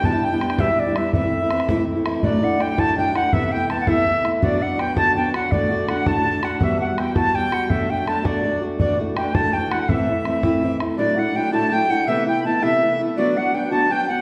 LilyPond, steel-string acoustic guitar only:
\new Staff \with { instrumentName = "Steel-string acoustic guitar" } { \time 6/8 \key a \dorian \tempo 4. = 110 <e, b, g b d' e'>16 <g b d' e'>8 <g b d' e'>16 <g b d' e'>8 <e, b, g b d' e'>16 <g b d' e'>8 <g b d' e'>16 <g b d' e'>8 | <a, e a c' e'>16 <a c' e'>8 <a c' e'>16 <e a c' e'>8 <a, e a c' e'>16 <a c' e'>8 <a c' e'>16 <e a c' e'>8 | <d, a, fis a d' e'>8 <fis a d' e'>8 <fis a d' e'>8 <d, a, fis a d' e'>8 <fis a d' e'>8 <fis a d' e'>8 | <c e a b e'>8 <a b e'>8 <e a b e'>8 <c e a b e'>8 <e a b>8 <a b e'>8 |
<d, d fis b d' fis'>8 <fis b d' fis'>8 <fis b d' fis'>8 <d, d fis b d' fis'>8 <fis b d' fis'>8 <fis b d' fis'>8 | <d, a, d a d' fis'>8 <d a d' fis'>8 <d a d' fis'>8 <d, a, d a d' fis'>8 <d a d' fis'>8 <d a d' fis'>8 | <e g b fis'>8 <g b fis'>8 <e g b fis'>8 <e g b fis'>8 <e g b fis'>8 <g b fis'>8 | <b, fis a d' fis'>8 <a d' fis'>8 <fis a d' fis'>8 <b, fis a d' fis'>8 <fis a d' fis'>8 <a d' fis'>8 |
<d, a, e a d' fis'>8 <e a d' fis'>8 <e a d' fis'>8 <d, a, e a d' fis'>8 <e a d' fis'>8 <e a d' fis'>8 | <a, e a c' e'>8 <a c' e'>8 <e a c' e'>8 <a, e a c' e'>8 <e a c' e'>8 <a c' e'>8 | <d, a, fis a d' e'>8 <fis a d' e'>8 <fis a d' e'>8 <d, a, fis a d' e'>8 <fis a d' e'>8 <fis a d' e'>8 | <c e a b e'>8 <a b e'>8 <e a b e'>8 <c e a b e'>8 <e a b e'>8 <a b e'>8 |
<d, d fis b d' fis'>8 <fis b d' fis'>8 <fis b d' fis'>8 <d, d fis b d' fis'>8 <fis b d' fis'>8 <fis b d' fis'>8 | }